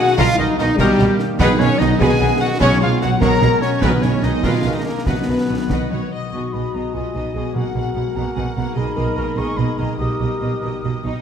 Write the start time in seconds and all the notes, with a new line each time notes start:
Already playing: B2 D#3 G#3 A#3 F#4 A#4 D#5 F#5 G#5
0.00 F#4 G#4 F#5
0.17 B1 B2 D#3 A#3 F4 A#4 D#5 F5 A#5, concert bass drum, snare
0.30 G3
0.36 B1 B2 D#4 A#4 D#5 A#5
0.49 D#4
0.58 B1 B2 D#4 A#4 D#5 G5, snare
0.70 D#4
0.78 B1 B2 D#3 G3 A#3 G4 A#4 D#5 A#5, concert bass drum, snare
0.90 A#5
0.98 B1 B2 A#4 D#5 A#5, snare
1.10 A#4
1.19 D#4, snare
1.29 A#3
1.38 B1 B2 D#3 B3 G#4 B4 D#5 F#5, concert bass drum, snare, crash
1.49 F#3
1.59 B1 B2 B3 C#4 G#4 B4 C#5 D#5 F#5, snare
1.78 B1 B2 D#4 F#4 G#4 B4 D#5, snare
1.90 B4
1.98 B1 B2 D#3 B3 G#4 B4 D#5 F#5 G#5, concert bass drum, snare
2.10 F#5
2.20 B1 B2 G#4 B4 D#5 F#5
2.30 B4
2.40 F#4 F#5
2.51 D#4
2.60 B1 B2 F#3 G#3 C#4 G#4 C#5 F#5, concert bass drum, snare
2.72 F#3
2.81 B1 B2 G#3 F4 G#4 C#5 F5 F#5
2.92 C#4
3.01 B1 B2 F#4 G#4 A#4 C#5 F#5, snare
3.12 G#4
3.20 B1 B2 F#3 G#3 G#4 A#4 C#5 F#5 A#5, concert bass drum, snare
3.33 F#5
3.41 B1 B2 G#4 C#5 F#5, snare
3.52 G#4
3.61 C#4 F#4 C#5, snare
3.72 C#4
3.82 B1 B2 D#3 G#3 B3 A#4 B4 D#5 G#5, concert bass drum, snare
3.92 G#3
4.02 B1 B2 A#3 C#4 A#4 B4 C#5 D#5 G#5, snare
4.22 B1 B2 D#4 G#4 A#4 B4 D#5, snare
4.33 A#4
4.42 B1 B2 F4 A#4 B4 D#5 F5 G#5, concert bass drum, snare
4.46 F5
4.54 G#5
4.64 B1 B2 A#4 B4 D#5 G#5
4.74 D#4 A#4 D#5
4.84 A#3 G#4 A#4
4.96 D#4
5.05 B1 B2 D#3 F#3 B3 B4 D#5 F#5, concert bass drum, snare
5.18 F#3
5.27 B1 B2 B4 D#5 F#5
5.40 D#4
5.48 B1 B2 F#4 B4 D#5
5.60 B4
5.69 B1 B2 B4 D#5 F#5, concert bass drum, snare
5.81 F#5
5.91 B1 B2 C#5 D#5 F#5
6.02 B4
6.12 B2 F#4 D#5
6.20 B3 D#4
6.29 B1 B3 F#4 G#4 C#6
6.33 B2 G#3 F#4 G#4 D#5
6.52 B1 B2 B3 G#4 D#5 B5
6.74 B1 B2 B3 G#4 D#5 A#5
6.93 B1 B2 B3 F4 G#4 D#5 G#5
7.15 B1 B2 B3 D#4 G#4 D#5
7.34 B1 B2 B3 G#4 D#5
7.41 A#3
7.46 F#4
7.50 G#4
7.55 B1 B2 A#3 F#4 G#4 A#4 F#5
7.74 B1 B2 A#3 G#4 F#5
7.94 B1 B2 A#3 G#4 F#5
8.15 B1 B2 A#3 F#4 G#4 F#5 A#5
8.34 B1 B2 A#3 G#4 F#5 G#5
8.55 B1 B2 A#3 G#4 F#5 A#5
8.62 A#3
8.67 D#4
8.71 G#4 D#5
8.75 B1 B2 G#3 A#3 D#4 G#4 B5
8.95 B1 B2 A#3 G#4 A#4 D#5
9.15 B1 B2 A#3 G#4 A#4 D#5
9.36 B1 B2 A#3 G#4 D#5 C#6
9.56 B1 B2 A#3 G#4 D#5 B5
9.77 B1 B2 A#3 G#4 D#5 A#5
9.81 B2
9.86 A#3
9.90 D#4
9.95 G3 G4 D#5 D#6
9.99 B1 B2 A#3 G4 A#4
10.19 B1 B2 A#3 G4 D#5
10.41 B1 B2 A#3 G4 D#5
10.62 B1 B2 A#3 G4 D#5
10.83 B1 B2 A#3 G4 D#5
11.04 B1 B2 A#3 D#4 G4 D#5